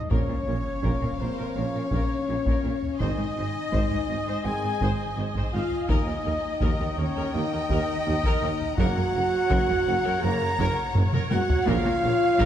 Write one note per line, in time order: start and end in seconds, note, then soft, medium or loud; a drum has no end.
0.10 0.18 A#1 medium
0.10 0.19 A#1 medium
0.10 0.18 A#2 medium
0.10 0.37 F3 medium
0.10 0.37 A#3 medium
0.10 1.20 C#4 medium
0.10 0.28 A#4 medium
0.10 1.19 C#5 medium
0.10 2.96 C#5 medium
0.10 1.17 C#5 medium
0.10 1.20 C#5 medium
0.10 2.96 F5 medium
0.10 taiko medium
0.10 sub drop medium
0.29 0.36 A#2 soft
0.29 0.36 A#4 soft
0.47 0.54 A#1 soft
0.47 0.55 A#1 soft
0.47 0.55 A#2 soft
0.47 0.55 A#4 medium
0.82 0.90 A#1 medium
0.82 0.91 A#1 medium
0.82 0.91 A#2 medium
0.82 1.00 A#4 medium
0.82 taiko medium
1.01 1.10 A#2 soft
1.01 1.09 A#4 soft
1.01 taiko low soft
1.19 1.26 A#1 soft
1.19 1.27 A#1 medium
1.19 1.27 A#2 soft
1.19 1.56 C4 medium
1.19 1.27 A#4 soft
1.19 1.56 A#4 medium
1.19 1.55 C5 medium
1.37 1.46 A#2 medium
1.37 1.54 A#4 medium
1.55 1.63 A#1 soft
1.55 1.63 A#2 soft
1.55 1.82 F3 medium
1.55 1.82 A#3 medium
1.55 3.01 C#4 medium
1.55 1.63 A#4 soft
1.55 2.97 C#5 medium
1.55 3.01 C#5 medium
1.55 2.98 C#5 medium
1.74 1.82 A#2 soft
1.74 1.82 A#4 soft
1.91 1.99 A#1 medium
1.91 1.99 A#2 medium
1.91 2.09 A#4 medium
1.91 taiko medium
2.28 2.35 A#1 medium
2.28 2.36 A#1 medium
2.28 2.35 A#2 soft
2.28 2.36 A#4 soft
2.46 2.53 A#2 medium
2.46 2.63 A#4 medium
2.46 taiko medium
2.63 2.71 A#1 soft
2.63 2.72 A#1 medium
2.63 2.71 A#2 medium
2.63 2.71 A#4 medium
2.82 taiko low medium
2.99 3.07 G#1 medium
2.99 3.08 G#1 medium
2.99 3.08 G#2 medium
2.99 3.26 D#3 medium
2.99 3.26 C4 medium
2.99 4.45 D#4 loud
2.99 3.17 C5 medium
2.99 4.47 D#5 medium
2.99 4.42 D#5 medium
2.99 8.75 D#5 medium
2.99 4.45 D#5 medium
2.99 6.58 G#5 medium
2.99 taiko medium
3.18 3.25 G#2 soft
3.18 3.26 C5 medium
3.35 3.43 G#1 soft
3.35 3.44 G#1 soft
3.35 3.43 G#2 medium
3.35 3.45 C5 medium
3.71 3.79 G#1 medium
3.71 3.81 G#1 medium
3.71 3.79 G#2 medium
3.71 3.90 C5 medium
3.71 taiko medium
3.91 3.98 G#2 medium
3.91 3.98 C5 soft
3.91 taiko low soft
4.07 4.15 G#1 medium
4.07 4.16 G#1 medium
4.07 4.16 G#2 soft
4.07 4.17 C5 medium
4.26 4.34 G#2 medium
4.26 4.44 C5 medium
4.44 4.52 G#1 medium
4.44 4.53 G#1 medium
4.44 4.52 G#2 soft
4.44 4.70 D#3 medium
4.44 4.71 C4 medium
4.44 5.17 G#4 medium
4.44 4.53 C5 soft
4.44 5.17 G#5 medium
4.44 5.16 G#5 medium
4.63 4.70 G#2 medium
4.63 4.71 C5 medium
4.80 4.88 G#1 medium
4.80 4.89 G#1 medium
4.80 4.88 G#2 medium
4.80 4.99 C5 medium
4.80 taiko medium
5.16 5.24 G#1 medium
5.16 5.25 G#2 medium
5.16 5.26 C5 medium
5.35 5.43 G#2 medium
5.35 5.53 C5 medium
5.35 taiko medium
5.52 5.61 G#1 medium
5.52 5.61 G#2 medium
5.52 5.87 F4 medium
5.52 5.61 C5 medium
5.52 5.87 F5 medium
5.52 5.92 F5 medium
5.71 taiko low soft
5.88 5.96 D#2 medium
5.88 5.97 D#2 medium
5.88 6.16 D#3 medium
5.88 6.16 A#3 medium
5.88 6.98 D#4 medium
5.88 6.07 A#4 medium
5.88 6.98 D#5 medium
5.88 6.96 D#5 medium
5.88 6.98 D#5 medium
5.88 11.67 A#5 medium
5.88 taiko medium
6.07 6.15 D#2 medium
6.07 6.15 A#4 medium
6.25 6.33 D#2 medium
6.25 6.33 A#4 medium
6.61 6.68 D#2 medium
6.61 6.69 D#2 medium
6.61 6.70 D#2 medium
6.61 6.79 A#4 medium
6.61 8.79 G5 medium
6.61 taiko medium
6.79 6.87 D#2 medium
6.79 6.87 A#4 medium
6.79 taiko low soft
6.97 7.05 D#2 medium
6.97 7.34 C#4 medium
6.97 7.05 A#4 medium
6.97 7.34 C#5 medium
6.97 7.35 C#5 medium
7.17 7.24 D#2 medium
7.17 7.34 A#4 medium
7.32 7.41 D#2 medium
7.32 7.42 D#2 medium
7.32 7.59 D#3 medium
7.32 7.60 A#3 medium
7.32 8.78 D#4 loud
7.32 7.42 A#4 medium
7.32 8.75 D#5 medium
7.32 8.78 D#5 medium
7.32 8.77 D#5 medium
7.53 7.60 D#2 medium
7.53 7.60 A#4 medium
7.69 7.77 D#2 medium
7.69 7.78 D#2 medium
7.69 7.87 A#4 medium
7.69 taiko medium
8.06 8.13 D#2 medium
8.06 8.14 D#2 medium
8.06 8.14 A#4 medium
8.24 8.32 D#2 medium
8.24 8.42 A#4 medium
8.24 taiko medium
8.42 8.49 D#2 medium
8.42 8.50 D#2 medium
8.42 8.50 A#4 medium
8.61 taiko low medium
8.77 8.85 F#1 medium
8.77 8.86 F#1 medium
8.77 8.86 F#2 medium
8.77 9.04 C#3 medium
8.77 9.05 A#3 medium
8.77 10.20 F#4 loud
8.77 8.96 A#4 loud
8.77 12.45 C#5 medium
8.77 11.63 F#5 medium
8.77 10.24 F#5 medium
8.77 10.20 F#5 loud
8.77 10.20 F#5 medium
8.77 taiko loud
8.96 9.04 F#2 medium
8.96 9.04 A#4 medium
9.14 9.22 F#1 medium
9.14 9.21 F#2 medium
9.14 9.22 A#4 medium
9.50 9.58 F#1 loud
9.50 9.58 F#1 medium
9.50 9.57 F#2 loud
9.50 9.67 A#4 medium
9.50 taiko medium
9.68 9.76 F#2 medium
9.68 9.76 A#4 medium
9.68 taiko low medium
9.86 9.94 F#1 medium
9.86 9.94 F#2 medium
9.86 9.94 A#4 medium
10.04 10.12 F#2 medium
10.04 10.22 A#4 medium
10.21 10.29 F#1 medium
10.21 10.30 F#1 medium
10.21 10.30 F#2 medium
10.21 10.50 C#3 medium
10.21 10.49 A#3 medium
10.21 10.94 A#4 loud
10.21 10.30 A#4 medium
10.21 10.95 A#5 medium
10.21 10.96 A#5 medium
10.41 10.48 F#2 medium
10.41 10.49 A#4 medium
10.58 10.66 F#1 loud
10.58 10.66 F#1 medium
10.58 10.66 F#2 loud
10.58 10.76 A#4 loud
10.58 taiko medium
10.95 11.02 F#1 medium
10.95 11.02 F#2 medium
10.95 11.03 A#4 medium
10.95 taiko low-mid medium
11.12 11.20 F#2 medium
11.12 11.30 A#4 loud
11.12 taiko mid loud
11.31 11.39 F#1 medium
11.31 11.40 F#1 medium
11.31 11.38 F#2 medium
11.31 11.66 F#4 loud
11.31 11.38 A#4 medium
11.31 11.65 F#5 loud
11.31 11.65 F#5 medium
11.31 11.68 F#5 medium
11.31 taiko high loud
11.49 taiko low loud
11.66 11.74 A#1 loud
11.66 11.75 A#1 loud
11.66 11.74 A#2 loud
11.66 11.93 C#3 medium
11.66 11.93 A#3 medium
11.66 12.45 F4 loud
11.66 11.85 A#4 loud
11.66 12.45 C#5 medium
11.66 12.45 F5 loud
11.66 12.45 F5 medium
11.66 12.45 F5 loud
11.66 taiko loud
11.85 11.93 A#2 medium
11.85 11.93 A#4 medium
12.04 12.11 A#1 medium
12.04 12.12 A#1 medium
12.04 12.11 A#2 medium
12.04 12.11 A#4 medium
12.39 12.45 A#1 loud
12.39 12.45 A#2 loud
12.39 12.45 A#4 loud
12.39 taiko medium